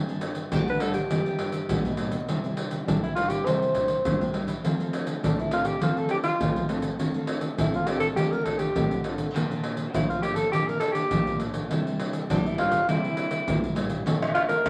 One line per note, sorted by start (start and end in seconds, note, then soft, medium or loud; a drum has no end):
0.00 0.49 G2 medium
0.08 0.48 G3 medium
0.08 0.48 B3 medium
0.08 0.48 D4 medium
0.08 pandeiro soft
0.08 shaker soft
0.21 pandeiro medium
0.21 shaker medium
0.35 pandeiro soft
0.35 shaker medium
0.52 1.08 D3 medium
0.52 0.77 G3 medium
0.52 0.77 B3 medium
0.52 0.77 D4 medium
0.52 0.66 G4 medium
0.52 pandeiro medium
0.52 shaker medium
0.52 surdo loud
0.68 0.82 B4 medium
0.68 pandeiro soft
0.68 shaker soft
0.80 0.98 G3 medium
0.80 0.98 B3 medium
0.80 0.98 D4 medium
0.80 0.93 A4 medium
0.80 pandeiro medium
0.80 shaker medium
0.94 1.94 G4 medium
0.94 pandeiro medium
0.94 shaker medium
1.11 1.67 G2 medium
1.11 1.65 G3 medium
1.11 1.66 B3 medium
1.11 1.66 D4 medium
1.11 pandeiro medium
1.11 shaker medium
1.11 surdo medium
1.26 pandeiro soft
1.26 shaker soft
1.39 pandeiro medium
1.52 pandeiro medium
1.52 shaker medium
1.69 2.26 D3 soft
1.69 1.95 G3 medium
1.69 1.95 B3 medium
1.69 1.95 D4 medium
1.69 pandeiro medium
1.69 shaker medium
1.69 surdo loud
1.85 2.29 B2 medium
1.85 pandeiro soft
1.85 shaker soft
1.97 2.18 G3 medium
1.97 2.18 B3 medium
1.97 2.18 D4 medium
1.97 pandeiro medium
1.97 shaker medium
2.11 pandeiro medium
2.11 shaker medium
2.29 2.85 C3 medium
2.29 2.39 G3 medium
2.29 2.39 D4 soft
2.29 2.39 E4 medium
2.29 pandeiro medium
2.29 shaker medium
2.29 surdo medium
2.44 2.83 G3 medium
2.44 2.84 D4 medium
2.44 2.84 E4 medium
2.44 pandeiro soft
2.44 shaker soft
2.57 pandeiro medium
2.57 shaker medium
2.71 pandeiro medium
2.71 shaker medium
2.88 3.15 G3 medium
2.88 3.01 D4 medium
2.88 3.05 D4 medium
2.88 3.05 E4 medium
2.88 pandeiro medium
2.88 shaker medium
2.88 surdo loud
3.03 3.14 E4 medium
3.03 pandeiro soft
3.03 shaker soft
3.15 3.41 G3 medium
3.15 3.41 D4 soft
3.15 3.41 E4 medium
3.15 3.30 F4 medium
3.15 pandeiro medium
3.29 3.47 G4 medium
3.29 pandeiro medium
3.29 shaker medium
3.45 4.02 C3 medium
3.45 4.00 G3 medium
3.45 4.01 D4 soft
3.45 4.01 E4 medium
3.45 4.34 C5 medium
3.45 pandeiro medium
3.45 shaker medium
3.45 surdo medium
3.62 pandeiro soft
3.62 shaker soft
3.75 pandeiro medium
3.75 shaker medium
3.75 surdo medium
3.88 pandeiro medium
3.88 shaker medium
4.05 4.32 G3 medium
4.05 4.23 D4 medium
4.05 4.23 E4 medium
4.05 pandeiro medium
4.05 shaker medium
4.05 surdo loud
4.21 4.34 C3 medium
4.21 pandeiro soft
4.21 shaker soft
4.33 4.47 D3 medium
4.33 4.53 G3 medium
4.33 4.53 D4 medium
4.33 4.53 E4 medium
4.33 pandeiro medium
4.47 4.63 E3 medium
4.47 pandeiro medium
4.47 shaker medium
4.64 5.20 F3 medium
4.64 4.74 A3 soft
4.64 4.74 C4 soft
4.64 4.74 F4 medium
4.64 pandeiro medium
4.64 shaker medium
4.64 surdo medium
4.79 5.18 A3 medium
4.79 5.18 C4 medium
4.79 5.19 F4 soft
4.79 pandeiro soft
4.79 shaker soft
4.93 pandeiro medium
4.93 shaker medium
5.07 pandeiro medium
5.07 shaker medium
5.23 5.79 C3 medium
5.23 5.77 A3 medium
5.23 5.77 C4 medium
5.23 5.41 D4 medium
5.23 5.77 F4 medium
5.23 pandeiro medium
5.23 shaker medium
5.23 surdo loud
5.39 5.52 E4 medium
5.39 pandeiro soft
5.39 shaker soft
5.51 5.67 F4 medium
5.51 pandeiro medium
5.51 shaker medium
5.65 5.81 G4 medium
5.65 pandeiro medium
5.65 shaker medium
5.81 6.37 F3 medium
5.81 6.20 A3 medium
5.81 6.20 C4 medium
5.81 6.20 F4 medium
5.81 5.99 F4 medium
5.81 pandeiro medium
5.81 shaker medium
5.81 surdo medium
5.97 6.10 A4 medium
5.97 pandeiro soft
5.97 shaker soft
6.09 6.17 G4 medium
6.09 pandeiro medium
6.24 6.66 F4 medium
6.24 pandeiro medium
6.24 shaker medium
6.40 6.96 C3 soft
6.40 6.58 A3 soft
6.40 6.58 C4 soft
6.40 6.58 F4 medium
6.40 pandeiro medium
6.40 shaker medium
6.40 surdo loud
6.56 6.99 F3 medium
6.56 pandeiro soft
6.56 shaker soft
6.69 6.87 A3 medium
6.69 6.87 C4 medium
6.69 6.87 F4 medium
6.69 pandeiro medium
6.69 shaker medium
6.82 pandeiro medium
6.82 shaker medium
6.99 7.55 D3 medium
6.99 7.09 A3 medium
6.99 7.09 C4 medium
6.99 7.10 F4 medium
6.99 pandeiro medium
6.99 shaker medium
6.99 surdo medium
7.14 7.54 A3 medium
7.14 7.54 C4 soft
7.14 7.54 F4 medium
7.14 pandeiro soft
7.14 shaker soft
7.27 pandeiro medium
7.41 pandeiro medium
7.41 shaker medium
7.58 8.14 A2 medium
7.58 7.83 A3 medium
7.58 7.83 C4 medium
7.58 7.77 E4 medium
7.58 7.83 F4 medium
7.58 pandeiro medium
7.58 shaker medium
7.58 surdo loud
7.74 7.88 F4 medium
7.74 pandeiro soft
7.74 shaker soft
7.87 8.12 A3 medium
7.87 8.12 C4 medium
7.87 8.12 F4 medium
7.87 8.00 G4 medium
7.87 pandeiro medium
8.00 8.07 A4 medium
8.00 pandeiro medium
8.00 shaker medium
8.16 8.73 D3 medium
8.16 8.55 A3 medium
8.16 8.55 C4 medium
8.16 8.56 F4 medium
8.16 8.33 G4 medium
8.16 pandeiro medium
8.16 shaker medium
8.16 surdo medium
8.31 8.45 A#4 medium
8.31 pandeiro soft
8.31 shaker soft
8.44 8.60 A4 medium
8.44 pandeiro medium
8.44 surdo medium
8.59 9.04 G4 medium
8.59 pandeiro medium
8.59 shaker medium
8.76 9.32 A2 medium
8.76 8.93 A3 soft
8.76 8.94 C4 soft
8.76 8.94 F4 soft
8.76 pandeiro medium
8.76 shaker medium
8.76 surdo loud
8.91 9.35 D3 medium
8.91 pandeiro soft
8.91 shaker soft
9.04 9.24 A3 medium
9.04 9.24 C4 medium
9.04 9.25 F4 medium
9.04 pandeiro medium
9.18 pandeiro medium
9.18 shaker medium
9.35 9.91 A#2 medium
9.35 9.44 F3 medium
9.35 9.44 A#3 medium
9.35 9.44 D4 medium
9.35 pandeiro medium
9.35 shaker medium
9.35 surdo soft
9.50 9.89 F3 soft
9.50 9.90 A#3 medium
9.50 9.90 D4 medium
9.50 pandeiro soft
9.50 shaker soft
9.64 pandeiro medium
9.77 pandeiro medium
9.77 shaker medium
9.94 10.50 F3 medium
9.94 10.48 A#3 medium
9.94 10.49 D4 medium
9.94 10.08 E4 medium
9.94 pandeiro medium
9.94 shaker medium
9.94 surdo medium
10.09 10.21 F4 medium
10.09 pandeiro soft
10.09 shaker soft
10.22 10.37 G4 medium
10.22 pandeiro medium
10.22 shaker medium
10.35 10.51 A4 medium
10.35 pandeiro medium
10.35 shaker medium
10.52 11.09 A#2 medium
10.52 10.91 F3 soft
10.52 10.91 A#3 soft
10.52 10.91 D4 medium
10.52 10.69 G4 medium
10.52 pandeiro medium
10.52 shaker medium
10.52 surdo medium
10.67 10.79 A#4 medium
10.67 pandeiro soft
10.67 shaker soft
10.80 10.94 A4 medium
10.80 pandeiro medium
10.80 shaker medium
10.92 11.39 G4 medium
10.92 pandeiro medium
10.92 shaker medium
11.11 11.39 F3 medium
11.11 11.37 A#3 soft
11.11 11.37 D4 medium
11.11 pandeiro medium
11.11 shaker medium
11.11 surdo loud
11.27 11.70 A#2 medium
11.27 pandeiro soft
11.27 shaker soft
11.40 11.68 F3 medium
11.40 11.68 A#3 medium
11.40 11.68 D4 medium
11.40 pandeiro medium
11.40 shaker medium
11.54 pandeiro medium
11.54 shaker medium
11.71 12.27 C3 medium
11.71 11.81 G3 medium
11.71 11.81 A#3 medium
11.71 11.81 E4 medium
11.71 pandeiro medium
11.71 shaker medium
11.71 surdo medium
11.87 12.26 G3 medium
11.87 12.26 A#3 soft
11.87 12.26 E4 medium
11.87 pandeiro soft
11.87 shaker soft
12.00 pandeiro medium
12.13 pandeiro medium
12.13 shaker medium
12.30 12.86 G2 medium
12.30 12.47 G3 medium
12.30 12.47 A#3 medium
12.30 12.48 D4 medium
12.30 12.47 E4 medium
12.30 pandeiro medium
12.30 shaker medium
12.30 surdo medium
12.46 12.60 E4 medium
12.46 pandeiro soft
12.46 shaker soft
12.58 12.84 G3 medium
12.58 12.84 A#3 soft
12.58 12.84 E4 medium
12.58 12.88 F4 medium
12.58 pandeiro medium
12.71 pandeiro medium
12.71 shaker medium
12.89 13.45 C3 soft
12.89 13.43 G3 medium
12.89 13.43 A#3 soft
12.89 13.73 E4 medium
12.89 13.43 E4 medium
12.89 pandeiro medium
12.89 shaker medium
12.89 surdo medium
13.04 pandeiro soft
13.04 shaker soft
13.17 pandeiro medium
13.17 shaker medium
13.31 pandeiro medium
13.31 shaker medium
13.48 14.04 G2 soft
13.48 13.74 C3 medium
13.48 13.65 G3 soft
13.48 13.65 A#3 soft
13.48 13.66 E4 medium
13.48 pandeiro medium
13.48 shaker medium
13.48 surdo loud
13.64 pandeiro soft
13.64 shaker soft
13.75 14.02 A#2 medium
13.75 14.03 G3 medium
13.75 14.04 A#3 medium
13.75 14.04 E4 medium
13.75 pandeiro medium
13.75 shaker medium
13.89 pandeiro medium
13.89 shaker medium
14.06 14.62 A#2 medium
14.06 14.46 F3 soft
14.06 14.46 A3 soft
14.06 14.46 D4 medium
14.06 pandeiro medium
14.06 shaker medium
14.06 surdo medium
14.22 pandeiro soft
14.22 tamborim medium
14.22 shaker soft
14.34 14.41 F4 medium
14.34 pandeiro medium
14.34 tamborim medium
14.48 14.69 F3 medium
14.48 14.69 A3 medium
14.48 14.69 D4 medium
14.48 14.69 A#4 medium
14.48 pandeiro medium
14.48 shaker medium
14.65 14.69 F2 medium
14.65 14.69 F3 medium
14.65 pandeiro medium
14.65 tamborim medium
14.65 shaker medium
14.65 surdo loud